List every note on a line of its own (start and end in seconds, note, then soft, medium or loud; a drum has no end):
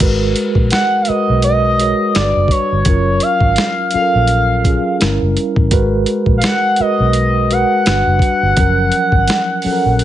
0.00 0.33 G#1 medium
0.00 0.97 G#3 medium
0.00 0.97 F#4 medium
0.00 0.98 A#4 medium
0.00 0.98 B4 medium
0.00 kick loud
0.00 closed hi-hat medium
0.00 crash medium
0.36 closed hi-hat medium
0.55 0.70 A#1 medium
0.55 kick medium
0.71 1.04 F#5 loud
0.71 snare loud
0.71 closed hi-hat medium
1.02 1.09 F5 medium
1.02 closed hi-hat medium
1.07 1.72 G#3 medium
1.07 1.72 F#4 medium
1.07 1.73 A#4 medium
1.07 1.73 B4 medium
1.07 1.43 D#5 medium
1.07 muted fingered electric bass stroke soft
1.29 1.92 B1 medium
1.42 2.17 D#5 loud
1.42 closed hi-hat medium
1.79 2.15 G#3 medium
1.79 2.15 F#4 medium
1.79 2.15 A#4 medium
1.79 2.16 C#5 medium
1.79 closed hi-hat medium
2.15 2.33 G1 medium
2.15 2.79 G3 medium
2.15 2.79 D4 medium
2.15 2.80 F#4 medium
2.15 2.23 A4 medium
2.15 2.53 D5 medium
2.15 snare loud
2.15 closed hi-hat medium
2.24 2.84 B4 medium
2.37 2.50 F#1 medium
2.48 3.24 C#5 medium
2.48 kick medium
2.48 closed hi-hat medium
2.72 2.85 G1 medium
2.85 3.18 F#1 medium
2.85 3.83 F#3 medium
2.85 3.84 C#4 medium
2.85 3.84 F4 medium
2.85 3.84 A#4 medium
2.85 kick loud
2.85 closed hi-hat medium
3.20 3.93 F5 loud
3.20 closed hi-hat medium
3.41 3.55 G#1 medium
3.41 kick medium
3.56 snare loud
3.56 closed hi-hat medium
3.91 4.58 F#3 medium
3.91 4.58 C#4 medium
3.91 4.58 F4 medium
3.91 4.97 F5 medium
3.91 closed hi-hat medium
3.95 4.01 A4 medium
3.95 muted fingered electric bass stroke soft
4.02 4.62 A#4 medium
4.15 4.78 A#1 medium
4.27 closed hi-hat medium
4.64 5.00 F#3 medium
4.64 4.99 C#4 medium
4.64 5.01 F4 medium
4.64 5.01 G#4 medium
4.64 kick medium
4.64 closed hi-hat medium
4.99 5.19 G1 medium
4.99 5.64 G3 medium
4.99 5.65 C#4 medium
4.99 5.65 E4 medium
4.99 5.65 A#4 medium
4.99 snare medium
4.99 closed hi-hat medium
5.22 5.35 F#1 medium
5.37 closed hi-hat medium
5.56 5.70 A1 medium
5.56 kick medium
5.71 6.04 G#1 medium
5.71 6.68 G#3 loud
5.71 6.69 F#4 medium
5.71 6.69 A#4 medium
5.71 6.69 B4 loud
5.71 kick loud
5.71 closed hi-hat medium
6.06 closed hi-hat medium
6.26 6.41 A#1 medium
6.26 kick medium
6.37 6.46 F5 medium
6.42 6.82 F#5 loud
6.42 snare loud
6.42 closed hi-hat medium
6.76 7.44 G#3 medium
6.76 7.44 F#4 medium
6.76 7.44 A#4 medium
6.76 muted fingered electric bass stroke soft
6.76 closed hi-hat medium
6.80 7.45 B4 medium
6.80 7.54 D#5 loud
7.00 7.63 B1 medium
7.13 closed hi-hat medium
7.51 7.86 G#3 medium
7.51 7.86 F#4 medium
7.51 7.87 A#4 medium
7.51 7.87 B4 medium
7.51 10.04 F#5 medium
7.51 closed hi-hat medium
7.86 8.04 G1 medium
7.86 8.51 G3 medium
7.86 8.51 D4 medium
7.86 8.51 F#4 medium
7.86 8.52 B4 medium
7.86 snare loud
7.86 closed hi-hat medium
8.07 8.20 F#1 medium
8.19 kick medium
8.19 closed hi-hat medium
8.43 8.56 G1 medium
8.57 8.90 F#1 medium
8.57 9.55 F3 medium
8.57 9.54 F#3 medium
8.57 9.55 C#4 medium
8.57 9.55 A#4 loud
8.57 kick loud
8.57 closed hi-hat medium
8.92 closed hi-hat medium
9.12 9.27 G#1 medium
9.12 kick medium
9.28 snare loud
9.28 closed hi-hat medium
9.62 10.04 F3 medium
9.62 10.04 F#3 medium
9.62 10.04 C#4 medium
9.62 muted fingered electric bass stroke soft
9.62 open hi-hat soft
9.66 9.73 A4 medium
9.73 10.04 A#4 medium
9.86 10.04 A#1 medium
9.99 closed hi-hat medium